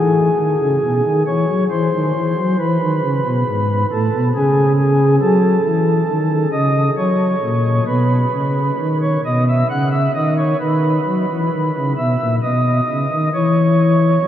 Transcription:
0.00 0.30 E3 medium
0.00 1.23 G#4 medium
0.37 0.56 D#3 medium
0.60 0.79 C#3 medium
0.83 1.01 B2 medium
1.05 1.23 D#3 medium
1.27 1.46 E3 medium
1.27 1.64 C#5 medium
1.48 1.67 F#3 medium
1.70 1.90 E3 medium
1.70 2.57 C5 medium
1.93 2.12 D#3 medium
2.14 2.34 E3 medium
2.37 2.56 F#3 medium
2.59 2.78 E3 medium
2.59 3.86 B4 loud
2.81 3.00 D#3 medium
3.02 3.21 C#3 medium
3.25 3.44 B2 medium
3.47 3.84 G#2 medium
3.92 4.10 A2 medium
3.92 4.28 A4 loud
4.14 4.32 B2 medium
4.35 5.19 C#3 medium
4.35 4.72 G#4 medium
4.79 5.15 G#4 loud
5.21 5.58 F#3 medium
5.21 6.48 A4 loud
5.65 6.02 E3 medium
6.09 6.46 D#3 medium
6.52 6.90 C#3 medium
6.52 6.90 D#5 loud
6.97 7.35 F#3 medium
6.97 7.84 C#5 medium
7.43 7.80 A#2 medium
7.87 8.25 B2 medium
7.87 8.98 B4 medium
8.32 8.71 C#3 medium
8.78 9.17 D#3 medium
9.02 9.21 C#5 medium
9.25 9.63 B2 medium
9.25 9.44 D#5 medium
9.49 9.67 E5 medium
9.70 10.09 C#3 medium
9.70 9.89 F#5 medium
9.91 10.11 E5 medium
10.15 10.53 D#3 medium
10.15 10.34 D#5 medium
10.38 10.57 C#5 medium
10.60 10.99 D#3 medium
10.60 11.93 B4 medium
11.06 11.25 F#3 medium
11.31 11.49 E3 medium
11.52 11.71 D#3 medium
11.75 11.94 C#3 medium
11.97 12.16 B2 medium
11.97 12.35 E5 medium
12.21 12.39 A#2 medium
12.43 12.81 B2 medium
12.43 13.29 D#5 medium
12.89 13.07 C#3 medium
13.11 13.29 D#3 medium
13.34 14.18 E3 medium
13.34 14.28 C#5 loud
14.22 14.28 F#3 medium

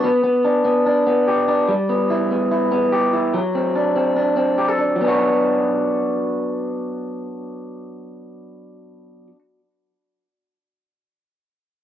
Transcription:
0.04 0.23 B3 medium
0.24 0.64 B3 medium
0.45 0.85 D4 medium
0.65 1.06 B3 medium
0.86 1.47 D4 medium
1.07 1.73 B3 medium
1.27 1.73 G4 medium
1.48 1.73 D4 medium
1.69 3.34 G3 medium
1.89 2.30 B3 medium
2.10 2.50 E4 medium
2.31 2.71 B3 medium
2.52 3.12 E4 medium
2.72 3.38 B3 medium
2.93 3.38 G4 medium
3.13 3.38 E4 medium
3.34 4.96 F#3 medium
3.55 3.95 C4 medium
3.76 4.16 D4 medium
3.96 4.36 C4 medium
4.16 4.78 D4 medium
4.37 5.01 C4 medium
4.58 4.69 G4 medium
4.69 5.04 A4 soft
4.79 5.04 D4 medium
4.96 9.27 F#3 medium
5.01 9.32 B3 medium
5.01 9.35 D4 medium
5.08 9.39 F#4 medium

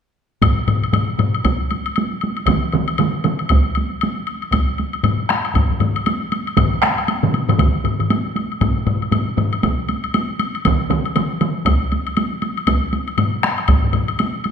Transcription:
0.42 taiko medium
0.42 taiko low-mid medium
0.42 taiko high medium
0.42 high woodblock medium
0.57 taiko high soft
0.68 taiko low-mid medium
0.68 taiko high soft
0.68 high woodblock soft
0.83 taiko high soft
0.83 high woodblock soft
0.93 taiko low-mid medium
0.93 taiko high medium
0.93 high woodblock soft
1.19 taiko low-mid medium
1.19 taiko high soft
1.19 high woodblock soft
1.34 taiko high soft
1.34 high woodblock soft
1.45 taiko loud
1.45 taiko high medium
1.45 high woodblock soft
1.61 taiko high soft
1.71 taiko high soft
1.71 high woodblock soft
1.86 taiko high soft
1.86 high woodblock soft
1.96 taiko high medium
1.96 high woodblock soft
2.13 taiko high soft
2.21 taiko high soft
2.21 high woodblock soft
2.37 taiko high soft
2.37 high woodblock soft
2.47 taiko medium
2.47 taiko mid medium
2.47 taiko high medium
2.47 high woodblock medium
2.65 taiko high soft
2.72 taiko mid medium
2.72 taiko high soft
2.72 high woodblock soft
2.88 taiko high soft
2.88 high woodblock soft
2.98 taiko mid medium
2.98 taiko high medium
2.98 high woodblock soft
3.24 taiko mid medium
3.24 taiko high medium
3.24 high woodblock soft
3.39 taiko high soft
3.39 high woodblock soft
3.49 taiko medium
3.49 taiko high medium
3.49 high woodblock soft
3.66 taiko high soft
3.75 taiko high soft
3.75 high woodblock soft
3.93 taiko high soft
4.01 taiko high medium
4.01 high woodblock soft
4.18 taiko high soft
4.27 high woodblock soft
4.42 taiko high soft
4.42 high woodblock soft
4.52 taiko medium
4.52 taiko high medium
4.52 high woodblock soft
4.69 taiko high soft
4.78 taiko high soft
4.78 high woodblock soft
4.93 taiko high soft
4.93 high woodblock soft
5.04 taiko low-mid medium
5.04 taiko high medium
5.04 high woodblock soft
5.29 taiko rim medium
5.29 taiko high soft
5.29 high woodblock soft
5.45 taiko high soft
5.45 high woodblock soft
5.55 taiko medium
5.55 taiko low-mid medium
5.55 taiko high medium
5.55 high woodblock soft
5.70 taiko low-mid medium
5.70 taiko high soft
5.80 taiko low-mid medium
5.80 taiko high soft
5.80 high woodblock soft
5.96 taiko high soft
5.96 high woodblock soft
6.06 taiko high medium
6.06 high woodblock soft
6.22 taiko high soft
6.32 taiko high soft
6.32 high woodblock soft
6.47 taiko high soft
6.47 high woodblock soft
6.57 taiko medium
6.57 taiko low-mid medium
6.57 taiko mid medium
6.57 taiko high medium
6.57 high woodblock medium
6.73 taiko high soft
6.82 taiko rim medium
6.82 taiko high soft
6.82 high woodblock soft
6.98 taiko high soft
6.98 high woodblock soft
7.08 taiko high medium
7.08 high woodblock soft
7.23 taiko low-mid medium
7.23 taiko mid medium
7.23 taiko high soft
7.34 taiko high soft
7.34 high woodblock soft
7.49 taiko low-mid medium
7.49 taiko mid medium
7.49 taiko high soft
7.49 high woodblock soft
7.58 taiko medium
7.58 taiko low-mid medium
7.58 taiko mid medium
7.58 taiko high medium
7.58 high woodblock soft
7.75 taiko high soft
7.84 taiko low-mid medium
7.84 taiko mid medium
7.84 high woodblock soft
7.99 taiko low-mid medium
7.99 taiko mid medium
7.99 high woodblock soft
8.10 taiko high medium
8.10 high woodblock soft
8.25 taiko high soft
8.36 taiko high medium
8.36 high woodblock soft
8.51 taiko high soft
8.51 high woodblock soft
8.61 taiko medium
8.61 taiko low-mid medium
8.61 taiko high medium
8.61 high woodblock soft
8.77 taiko high soft
8.87 taiko low-mid medium
8.87 taiko high medium
8.87 high woodblock soft
9.02 taiko high soft
9.02 high woodblock soft
9.12 taiko low-mid medium
9.12 taiko high medium
9.12 high woodblock soft
9.37 taiko low-mid medium
9.37 taiko high medium
9.37 high woodblock soft
9.53 taiko high soft
9.53 high woodblock soft
9.63 taiko medium
9.63 taiko high medium
9.63 high woodblock soft
9.78 taiko high soft
9.89 taiko high soft
9.89 high woodblock soft
10.04 taiko high soft
10.04 high woodblock soft
10.14 taiko high medium
10.14 high woodblock soft
10.29 taiko high soft
10.39 taiko high medium
10.39 high woodblock soft
10.54 taiko high soft
10.54 high woodblock soft
10.65 taiko medium
10.65 taiko mid medium
10.65 taiko high medium
10.65 high woodblock medium
10.80 taiko high soft
10.90 taiko mid medium
10.90 taiko high soft
10.90 high woodblock soft
11.05 taiko high soft
11.05 high woodblock soft
11.16 taiko mid medium
11.16 taiko high medium
11.16 high woodblock soft
11.41 taiko mid medium
11.41 taiko high medium
11.41 high woodblock soft
11.56 taiko high soft
11.66 taiko loud
11.66 taiko high medium
11.66 high woodblock soft
11.82 taiko high soft
11.92 taiko high soft
11.92 high woodblock soft
12.07 taiko high soft
12.07 high woodblock soft
12.17 taiko high medium
12.17 high woodblock soft
12.33 taiko high soft
12.42 taiko high soft
12.42 high woodblock soft
12.57 taiko high soft
12.57 high woodblock soft
12.67 taiko medium
12.67 taiko high medium
12.67 high woodblock soft
12.82 taiko high soft
12.93 taiko high medium
12.93 high woodblock soft
13.08 taiko high soft
13.08 high woodblock soft
13.18 taiko low-mid medium
13.18 taiko high medium
13.18 high woodblock soft
13.43 taiko rim medium
13.43 taiko high soft
13.43 high woodblock soft
13.58 taiko high soft
13.58 high woodblock soft
13.68 taiko medium
13.68 taiko low-mid medium
13.68 taiko high medium
13.68 high woodblock soft
13.84 taiko low-mid medium
13.84 taiko high soft
13.93 taiko low-mid medium
13.93 taiko high soft
13.93 high woodblock soft
14.08 taiko high soft
14.08 high woodblock soft
14.19 taiko high medium
14.19 high woodblock soft
14.35 taiko high soft
14.44 taiko high soft
14.44 high woodblock soft

